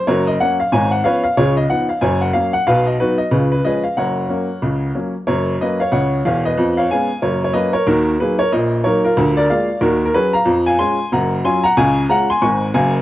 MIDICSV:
0, 0, Header, 1, 2, 480
1, 0, Start_track
1, 0, Key_signature, 6, "major"
1, 0, Tempo, 325203
1, 87, Time_signature, 4, 2, 24, 8
1, 19215, End_track
2, 0, Start_track
2, 0, Title_t, "Grand piano"
2, 0, Program_c, 0, 0
2, 107, Note_on_c, 0, 73, 86
2, 115, Note_on_c, 0, 30, 69
2, 116, Note_on_c, 0, 42, 76
2, 128, Note_on_c, 0, 70, 67
2, 129, Note_on_c, 0, 66, 64
2, 343, Note_off_c, 0, 73, 0
2, 377, Note_off_c, 0, 66, 0
2, 377, Note_off_c, 0, 70, 0
2, 401, Note_on_c, 0, 75, 83
2, 511, Note_off_c, 0, 30, 0
2, 512, Note_off_c, 0, 42, 0
2, 553, Note_off_c, 0, 75, 0
2, 596, Note_on_c, 0, 78, 96
2, 601, Note_on_c, 0, 58, 46
2, 602, Note_on_c, 0, 54, 36
2, 612, Note_on_c, 0, 61, 57
2, 828, Note_off_c, 0, 78, 0
2, 856, Note_off_c, 0, 54, 0
2, 856, Note_off_c, 0, 58, 0
2, 863, Note_off_c, 0, 61, 0
2, 883, Note_on_c, 0, 77, 90
2, 1034, Note_off_c, 0, 77, 0
2, 1065, Note_on_c, 0, 32, 69
2, 1068, Note_on_c, 0, 80, 96
2, 1072, Note_on_c, 0, 44, 73
2, 1084, Note_on_c, 0, 73, 55
2, 1084, Note_on_c, 0, 77, 67
2, 1304, Note_off_c, 0, 80, 0
2, 1335, Note_off_c, 0, 73, 0
2, 1335, Note_off_c, 0, 77, 0
2, 1346, Note_on_c, 0, 78, 80
2, 1466, Note_off_c, 0, 32, 0
2, 1470, Note_off_c, 0, 44, 0
2, 1505, Note_off_c, 0, 78, 0
2, 1535, Note_on_c, 0, 77, 101
2, 1539, Note_on_c, 0, 53, 43
2, 1541, Note_on_c, 0, 59, 42
2, 1544, Note_on_c, 0, 61, 49
2, 1554, Note_on_c, 0, 71, 67
2, 1558, Note_on_c, 0, 73, 76
2, 1777, Note_off_c, 0, 77, 0
2, 1800, Note_off_c, 0, 53, 0
2, 1801, Note_off_c, 0, 59, 0
2, 1803, Note_off_c, 0, 61, 0
2, 1809, Note_off_c, 0, 71, 0
2, 1811, Note_off_c, 0, 73, 0
2, 1824, Note_on_c, 0, 77, 100
2, 1983, Note_off_c, 0, 77, 0
2, 2024, Note_on_c, 0, 49, 79
2, 2026, Note_on_c, 0, 73, 99
2, 2028, Note_on_c, 0, 37, 67
2, 2043, Note_on_c, 0, 65, 75
2, 2050, Note_on_c, 0, 68, 58
2, 2262, Note_off_c, 0, 73, 0
2, 2294, Note_off_c, 0, 65, 0
2, 2298, Note_off_c, 0, 68, 0
2, 2314, Note_on_c, 0, 75, 83
2, 2425, Note_off_c, 0, 49, 0
2, 2427, Note_off_c, 0, 37, 0
2, 2469, Note_off_c, 0, 75, 0
2, 2505, Note_on_c, 0, 53, 48
2, 2505, Note_on_c, 0, 78, 88
2, 2509, Note_on_c, 0, 59, 39
2, 2517, Note_on_c, 0, 63, 52
2, 2742, Note_off_c, 0, 78, 0
2, 2765, Note_off_c, 0, 53, 0
2, 2768, Note_off_c, 0, 59, 0
2, 2773, Note_off_c, 0, 63, 0
2, 2791, Note_on_c, 0, 77, 74
2, 2947, Note_off_c, 0, 77, 0
2, 2969, Note_on_c, 0, 80, 75
2, 2971, Note_on_c, 0, 42, 80
2, 2977, Note_on_c, 0, 30, 63
2, 2990, Note_on_c, 0, 73, 74
2, 3213, Note_off_c, 0, 80, 0
2, 3247, Note_off_c, 0, 73, 0
2, 3267, Note_on_c, 0, 78, 69
2, 3378, Note_off_c, 0, 42, 0
2, 3381, Note_off_c, 0, 30, 0
2, 3426, Note_off_c, 0, 78, 0
2, 3443, Note_on_c, 0, 54, 41
2, 3445, Note_on_c, 0, 77, 99
2, 3456, Note_on_c, 0, 58, 42
2, 3463, Note_on_c, 0, 61, 52
2, 3691, Note_off_c, 0, 77, 0
2, 3708, Note_off_c, 0, 54, 0
2, 3718, Note_off_c, 0, 58, 0
2, 3723, Note_off_c, 0, 61, 0
2, 3738, Note_on_c, 0, 78, 95
2, 3900, Note_off_c, 0, 78, 0
2, 3938, Note_on_c, 0, 77, 110
2, 3939, Note_on_c, 0, 47, 70
2, 3942, Note_on_c, 0, 35, 79
2, 3959, Note_on_c, 0, 71, 79
2, 4179, Note_off_c, 0, 77, 0
2, 4213, Note_off_c, 0, 71, 0
2, 4227, Note_on_c, 0, 75, 70
2, 4343, Note_off_c, 0, 47, 0
2, 4345, Note_off_c, 0, 35, 0
2, 4386, Note_off_c, 0, 75, 0
2, 4418, Note_on_c, 0, 54, 38
2, 4427, Note_on_c, 0, 71, 83
2, 4434, Note_on_c, 0, 59, 45
2, 4444, Note_on_c, 0, 63, 57
2, 4444, Note_on_c, 0, 66, 54
2, 4664, Note_off_c, 0, 71, 0
2, 4680, Note_off_c, 0, 54, 0
2, 4691, Note_off_c, 0, 59, 0
2, 4692, Note_on_c, 0, 75, 80
2, 4696, Note_off_c, 0, 63, 0
2, 4696, Note_off_c, 0, 66, 0
2, 4858, Note_off_c, 0, 75, 0
2, 4888, Note_on_c, 0, 49, 76
2, 4893, Note_on_c, 0, 71, 61
2, 4895, Note_on_c, 0, 37, 47
2, 4913, Note_on_c, 0, 65, 45
2, 4914, Note_on_c, 0, 68, 48
2, 5136, Note_off_c, 0, 71, 0
2, 5170, Note_off_c, 0, 65, 0
2, 5171, Note_off_c, 0, 68, 0
2, 5192, Note_on_c, 0, 71, 73
2, 5297, Note_off_c, 0, 49, 0
2, 5301, Note_off_c, 0, 37, 0
2, 5349, Note_off_c, 0, 71, 0
2, 5379, Note_on_c, 0, 53, 46
2, 5381, Note_on_c, 0, 75, 78
2, 5383, Note_on_c, 0, 56, 42
2, 5395, Note_on_c, 0, 61, 51
2, 5401, Note_on_c, 0, 68, 57
2, 5405, Note_on_c, 0, 71, 67
2, 5621, Note_off_c, 0, 75, 0
2, 5641, Note_off_c, 0, 53, 0
2, 5644, Note_off_c, 0, 56, 0
2, 5652, Note_off_c, 0, 61, 0
2, 5655, Note_off_c, 0, 68, 0
2, 5657, Note_off_c, 0, 71, 0
2, 5663, Note_on_c, 0, 77, 63
2, 5824, Note_off_c, 0, 77, 0
2, 5860, Note_on_c, 0, 78, 71
2, 5863, Note_on_c, 0, 30, 52
2, 5864, Note_on_c, 0, 42, 60
2, 5878, Note_on_c, 0, 70, 56
2, 5884, Note_on_c, 0, 73, 55
2, 6267, Note_off_c, 0, 30, 0
2, 6267, Note_off_c, 0, 42, 0
2, 6332, Note_on_c, 0, 54, 37
2, 6342, Note_on_c, 0, 58, 43
2, 6351, Note_on_c, 0, 61, 37
2, 6596, Note_off_c, 0, 54, 0
2, 6603, Note_off_c, 0, 58, 0
2, 6610, Note_off_c, 0, 61, 0
2, 6820, Note_on_c, 0, 49, 52
2, 6822, Note_on_c, 0, 37, 56
2, 7225, Note_off_c, 0, 49, 0
2, 7227, Note_off_c, 0, 37, 0
2, 7299, Note_on_c, 0, 58, 36
2, 7303, Note_on_c, 0, 54, 38
2, 7311, Note_on_c, 0, 61, 44
2, 7327, Note_off_c, 0, 78, 0
2, 7536, Note_off_c, 0, 70, 0
2, 7539, Note_off_c, 0, 73, 0
2, 7562, Note_off_c, 0, 58, 0
2, 7565, Note_off_c, 0, 54, 0
2, 7571, Note_off_c, 0, 61, 0
2, 7779, Note_on_c, 0, 73, 85
2, 7787, Note_on_c, 0, 30, 59
2, 7790, Note_on_c, 0, 42, 77
2, 7805, Note_on_c, 0, 70, 53
2, 8185, Note_off_c, 0, 73, 0
2, 8190, Note_off_c, 0, 30, 0
2, 8192, Note_off_c, 0, 42, 0
2, 8237, Note_off_c, 0, 70, 0
2, 8278, Note_on_c, 0, 54, 41
2, 8281, Note_on_c, 0, 58, 45
2, 8283, Note_on_c, 0, 75, 77
2, 8286, Note_on_c, 0, 61, 43
2, 8298, Note_on_c, 0, 71, 59
2, 8516, Note_off_c, 0, 75, 0
2, 8536, Note_off_c, 0, 54, 0
2, 8538, Note_off_c, 0, 58, 0
2, 8542, Note_off_c, 0, 61, 0
2, 8546, Note_off_c, 0, 71, 0
2, 8560, Note_on_c, 0, 77, 83
2, 8579, Note_on_c, 0, 73, 64
2, 8717, Note_off_c, 0, 77, 0
2, 8730, Note_off_c, 0, 73, 0
2, 8733, Note_on_c, 0, 49, 71
2, 8735, Note_on_c, 0, 37, 58
2, 8739, Note_on_c, 0, 78, 68
2, 8752, Note_on_c, 0, 73, 63
2, 9142, Note_off_c, 0, 49, 0
2, 9144, Note_off_c, 0, 37, 0
2, 9146, Note_off_c, 0, 78, 0
2, 9191, Note_off_c, 0, 73, 0
2, 9226, Note_on_c, 0, 77, 91
2, 9227, Note_on_c, 0, 40, 66
2, 9228, Note_on_c, 0, 28, 81
2, 9250, Note_on_c, 0, 73, 60
2, 9467, Note_off_c, 0, 77, 0
2, 9502, Note_off_c, 0, 73, 0
2, 9524, Note_on_c, 0, 75, 84
2, 9538, Note_on_c, 0, 71, 55
2, 9607, Note_off_c, 0, 28, 0
2, 9607, Note_off_c, 0, 40, 0
2, 9704, Note_on_c, 0, 41, 75
2, 9711, Note_on_c, 0, 53, 67
2, 9924, Note_off_c, 0, 75, 0
2, 9969, Note_off_c, 0, 71, 0
2, 9997, Note_on_c, 0, 77, 93
2, 10021, Note_on_c, 0, 73, 64
2, 10109, Note_off_c, 0, 41, 0
2, 10113, Note_off_c, 0, 53, 0
2, 10155, Note_off_c, 0, 77, 0
2, 10183, Note_off_c, 0, 73, 0
2, 10198, Note_on_c, 0, 80, 82
2, 10204, Note_on_c, 0, 56, 42
2, 10214, Note_on_c, 0, 59, 47
2, 10218, Note_on_c, 0, 61, 47
2, 10225, Note_on_c, 0, 77, 64
2, 10461, Note_off_c, 0, 56, 0
2, 10468, Note_off_c, 0, 59, 0
2, 10471, Note_off_c, 0, 61, 0
2, 10597, Note_off_c, 0, 80, 0
2, 10649, Note_off_c, 0, 77, 0
2, 10660, Note_on_c, 0, 73, 79
2, 10661, Note_on_c, 0, 30, 56
2, 10661, Note_on_c, 0, 42, 66
2, 10677, Note_on_c, 0, 70, 53
2, 10931, Note_off_c, 0, 73, 0
2, 10966, Note_off_c, 0, 70, 0
2, 10985, Note_on_c, 0, 73, 76
2, 11068, Note_off_c, 0, 30, 0
2, 11068, Note_off_c, 0, 42, 0
2, 11114, Note_on_c, 0, 54, 43
2, 11118, Note_off_c, 0, 73, 0
2, 11120, Note_on_c, 0, 75, 89
2, 11122, Note_on_c, 0, 58, 56
2, 11129, Note_on_c, 0, 61, 52
2, 11137, Note_on_c, 0, 71, 73
2, 11372, Note_off_c, 0, 75, 0
2, 11384, Note_off_c, 0, 54, 0
2, 11390, Note_off_c, 0, 58, 0
2, 11395, Note_off_c, 0, 61, 0
2, 11405, Note_off_c, 0, 71, 0
2, 11412, Note_on_c, 0, 73, 95
2, 11434, Note_on_c, 0, 70, 67
2, 11581, Note_off_c, 0, 73, 0
2, 11593, Note_off_c, 0, 70, 0
2, 11612, Note_on_c, 0, 39, 71
2, 11614, Note_on_c, 0, 51, 85
2, 11615, Note_on_c, 0, 70, 86
2, 11632, Note_on_c, 0, 66, 61
2, 12023, Note_off_c, 0, 39, 0
2, 12024, Note_off_c, 0, 51, 0
2, 12025, Note_off_c, 0, 70, 0
2, 12072, Note_off_c, 0, 66, 0
2, 12103, Note_on_c, 0, 71, 73
2, 12112, Note_on_c, 0, 58, 49
2, 12114, Note_on_c, 0, 54, 45
2, 12122, Note_on_c, 0, 63, 43
2, 12124, Note_on_c, 0, 68, 56
2, 12346, Note_off_c, 0, 71, 0
2, 12372, Note_off_c, 0, 58, 0
2, 12374, Note_off_c, 0, 54, 0
2, 12380, Note_off_c, 0, 63, 0
2, 12380, Note_off_c, 0, 68, 0
2, 12380, Note_on_c, 0, 73, 99
2, 12402, Note_on_c, 0, 70, 66
2, 12546, Note_off_c, 0, 73, 0
2, 12573, Note_off_c, 0, 70, 0
2, 12580, Note_on_c, 0, 75, 77
2, 12581, Note_on_c, 0, 46, 76
2, 12584, Note_on_c, 0, 34, 70
2, 12600, Note_on_c, 0, 70, 58
2, 12988, Note_off_c, 0, 46, 0
2, 12988, Note_off_c, 0, 75, 0
2, 12990, Note_off_c, 0, 34, 0
2, 13037, Note_off_c, 0, 70, 0
2, 13048, Note_on_c, 0, 73, 84
2, 13056, Note_on_c, 0, 54, 51
2, 13066, Note_on_c, 0, 58, 52
2, 13069, Note_on_c, 0, 63, 57
2, 13071, Note_on_c, 0, 70, 70
2, 13298, Note_off_c, 0, 73, 0
2, 13321, Note_off_c, 0, 54, 0
2, 13328, Note_off_c, 0, 58, 0
2, 13328, Note_off_c, 0, 70, 0
2, 13330, Note_off_c, 0, 63, 0
2, 13351, Note_on_c, 0, 70, 85
2, 13364, Note_on_c, 0, 65, 72
2, 13537, Note_on_c, 0, 38, 84
2, 13549, Note_on_c, 0, 50, 82
2, 13757, Note_off_c, 0, 70, 0
2, 13802, Note_off_c, 0, 65, 0
2, 13828, Note_on_c, 0, 74, 103
2, 13846, Note_on_c, 0, 70, 76
2, 13946, Note_off_c, 0, 38, 0
2, 13952, Note_off_c, 0, 50, 0
2, 13991, Note_off_c, 0, 74, 0
2, 14016, Note_off_c, 0, 70, 0
2, 14022, Note_on_c, 0, 77, 85
2, 14023, Note_on_c, 0, 56, 47
2, 14027, Note_on_c, 0, 58, 42
2, 14034, Note_on_c, 0, 65, 58
2, 14041, Note_on_c, 0, 74, 65
2, 14286, Note_off_c, 0, 56, 0
2, 14289, Note_off_c, 0, 58, 0
2, 14294, Note_off_c, 0, 65, 0
2, 14429, Note_off_c, 0, 77, 0
2, 14477, Note_off_c, 0, 74, 0
2, 14479, Note_on_c, 0, 70, 85
2, 14480, Note_on_c, 0, 39, 72
2, 14483, Note_on_c, 0, 51, 72
2, 14498, Note_on_c, 0, 66, 68
2, 14759, Note_off_c, 0, 70, 0
2, 14796, Note_off_c, 0, 66, 0
2, 14840, Note_on_c, 0, 70, 90
2, 14896, Note_off_c, 0, 39, 0
2, 14897, Note_off_c, 0, 51, 0
2, 14967, Note_off_c, 0, 70, 0
2, 14972, Note_on_c, 0, 71, 101
2, 14974, Note_on_c, 0, 54, 57
2, 14978, Note_on_c, 0, 61, 50
2, 14980, Note_on_c, 0, 66, 56
2, 14989, Note_on_c, 0, 68, 65
2, 15219, Note_off_c, 0, 71, 0
2, 15239, Note_off_c, 0, 54, 0
2, 15242, Note_off_c, 0, 61, 0
2, 15244, Note_off_c, 0, 66, 0
2, 15251, Note_off_c, 0, 68, 0
2, 15252, Note_on_c, 0, 82, 102
2, 15274, Note_on_c, 0, 77, 73
2, 15422, Note_on_c, 0, 53, 74
2, 15432, Note_on_c, 0, 41, 80
2, 15666, Note_off_c, 0, 82, 0
2, 15716, Note_off_c, 0, 77, 0
2, 15740, Note_on_c, 0, 80, 97
2, 15763, Note_on_c, 0, 77, 66
2, 15845, Note_off_c, 0, 53, 0
2, 15850, Note_off_c, 0, 41, 0
2, 15906, Note_off_c, 0, 80, 0
2, 15924, Note_on_c, 0, 84, 102
2, 15927, Note_on_c, 0, 56, 51
2, 15933, Note_off_c, 0, 77, 0
2, 15935, Note_on_c, 0, 61, 52
2, 15944, Note_on_c, 0, 65, 54
2, 15950, Note_on_c, 0, 80, 81
2, 16193, Note_off_c, 0, 56, 0
2, 16199, Note_off_c, 0, 61, 0
2, 16206, Note_off_c, 0, 65, 0
2, 16337, Note_off_c, 0, 84, 0
2, 16390, Note_off_c, 0, 80, 0
2, 16415, Note_on_c, 0, 30, 68
2, 16418, Note_on_c, 0, 42, 72
2, 16425, Note_on_c, 0, 82, 73
2, 16435, Note_on_c, 0, 78, 57
2, 16823, Note_off_c, 0, 30, 0
2, 16825, Note_off_c, 0, 42, 0
2, 16829, Note_off_c, 0, 82, 0
2, 16872, Note_off_c, 0, 78, 0
2, 16890, Note_on_c, 0, 54, 60
2, 16896, Note_on_c, 0, 84, 88
2, 16899, Note_on_c, 0, 61, 54
2, 16903, Note_on_c, 0, 65, 57
2, 16903, Note_on_c, 0, 80, 75
2, 17140, Note_off_c, 0, 84, 0
2, 17155, Note_off_c, 0, 54, 0
2, 17162, Note_off_c, 0, 61, 0
2, 17164, Note_off_c, 0, 65, 0
2, 17167, Note_off_c, 0, 80, 0
2, 17174, Note_on_c, 0, 82, 110
2, 17197, Note_on_c, 0, 78, 82
2, 17341, Note_off_c, 0, 82, 0
2, 17369, Note_off_c, 0, 78, 0
2, 17373, Note_on_c, 0, 37, 79
2, 17374, Note_on_c, 0, 49, 93
2, 17374, Note_on_c, 0, 80, 106
2, 17388, Note_on_c, 0, 77, 65
2, 17781, Note_off_c, 0, 37, 0
2, 17781, Note_off_c, 0, 49, 0
2, 17781, Note_off_c, 0, 80, 0
2, 17827, Note_off_c, 0, 77, 0
2, 17847, Note_on_c, 0, 56, 65
2, 17852, Note_on_c, 0, 82, 100
2, 17855, Note_on_c, 0, 61, 54
2, 17865, Note_on_c, 0, 65, 59
2, 17875, Note_on_c, 0, 78, 81
2, 18097, Note_off_c, 0, 82, 0
2, 18112, Note_off_c, 0, 56, 0
2, 18118, Note_off_c, 0, 61, 0
2, 18125, Note_off_c, 0, 65, 0
2, 18132, Note_off_c, 0, 78, 0
2, 18153, Note_on_c, 0, 84, 105
2, 18171, Note_on_c, 0, 80, 77
2, 18311, Note_off_c, 0, 84, 0
2, 18323, Note_off_c, 0, 80, 0
2, 18328, Note_on_c, 0, 85, 73
2, 18329, Note_on_c, 0, 44, 68
2, 18330, Note_on_c, 0, 32, 69
2, 18345, Note_on_c, 0, 80, 71
2, 18736, Note_off_c, 0, 85, 0
2, 18737, Note_off_c, 0, 44, 0
2, 18738, Note_off_c, 0, 32, 0
2, 18784, Note_off_c, 0, 80, 0
2, 18808, Note_on_c, 0, 30, 89
2, 18809, Note_on_c, 0, 42, 72
2, 18810, Note_on_c, 0, 80, 90
2, 18832, Note_on_c, 0, 77, 67
2, 19054, Note_off_c, 0, 80, 0
2, 19089, Note_off_c, 0, 77, 0
2, 19192, Note_off_c, 0, 30, 0
2, 19192, Note_off_c, 0, 42, 0
2, 19215, End_track
0, 0, End_of_file